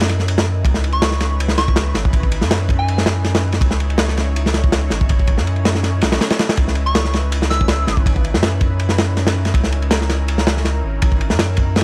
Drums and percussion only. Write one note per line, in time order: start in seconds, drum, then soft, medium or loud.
0.01 snare loud
0.01 ride medium
0.09 snare soft
0.09 ride medium
0.19 snare soft
0.28 ride medium
0.38 snare loud
0.65 kick loud
0.65 ride medium
0.74 snare medium
0.84 ride medium
0.92 ride soft
1.02 snare loud
1.02 ride loud
1.11 snare soft
1.20 snare soft
1.20 ride medium
1.40 ride medium
1.48 snare soft
1.58 snare medium
1.58 ride medium
1.68 kick loud
1.76 snare loud
1.76 ride medium
1.94 snare medium
1.94 ride medium
2.05 kick medium
2.13 kick loud
2.13 ride medium
2.23 kick loud
2.32 ride medium
2.41 snare medium
2.51 snare loud
2.51 ride medium
2.69 kick medium
2.69 ride medium
2.88 ride medium
2.98 snare medium
3.06 snare loud
3.06 ride medium
3.24 snare medium
3.24 ride medium
3.35 snare loud
3.35 ride medium
3.52 snare soft
3.52 ride medium
3.61 kick loud
3.61 ride medium
3.71 snare medium
3.80 ride medium
3.90 ride soft
3.98 snare loud
3.98 ride loud
4.08 snare medium
4.17 snare soft
4.17 ride medium
4.36 ride medium
4.46 snare medium
4.54 snare medium
4.54 ride medium
4.64 kick medium
4.72 snare loud
4.72 ride medium
4.90 snare medium
4.90 ride medium
5.01 kick loud
5.09 kick loud
5.09 ride medium
5.19 kick loud
5.27 kick loud
5.27 ride medium
5.38 snare soft
5.47 ride medium
5.56 ride soft
5.65 snare loud
5.65 ride medium
5.75 snare soft
5.83 snare soft
5.83 ride medium
6.01 snare loud
6.01 ride medium
6.12 snare loud
6.12 ride medium
6.21 snare loud
6.21 ride medium
6.30 snare loud
6.30 ride medium
6.39 snare loud
6.39 ride medium
6.49 snare loud
6.49 ride medium
6.57 kick loud
6.57 ride medium
6.68 snare soft
6.75 ride medium
6.87 ride soft
6.95 snare loud
6.95 ride loud
7.05 snare soft
7.13 snare medium
7.13 ride medium
7.32 ride loud
7.42 snare medium
7.51 snare soft
7.51 ride medium
7.61 kick medium
7.68 snare loud
7.68 ride loud
7.87 snare medium
7.87 ride medium
7.97 kick loud
8.06 kick loud
8.06 ride medium
8.16 kick medium
8.25 ride medium
8.34 snare medium
8.43 snare loud
8.43 ride medium
8.61 kick medium
8.61 ride medium
8.79 ride medium
8.89 snare medium
8.98 snare loud
8.98 ride medium
9.17 snare soft
9.17 ride medium
9.27 snare loud
9.27 ride medium
9.45 snare soft
9.45 ride medium
9.54 kick loud
9.54 ride medium
9.64 snare medium
9.72 ride medium
9.82 ride soft
9.91 snare loud
9.91 ride medium
10.01 snare soft
10.09 snare soft
10.09 ride medium
10.28 ride medium
10.38 snare medium
10.47 snare loud
10.47 ride medium
10.57 snare soft
10.65 snare soft
10.65 ride medium
11.02 kick loud
11.02 ride medium
11.12 kick loud
11.21 ride medium
11.30 snare medium
11.39 snare loud
11.39 ride loud
11.57 kick loud
11.57 ride medium
11.76 snare medium
11.76 ride medium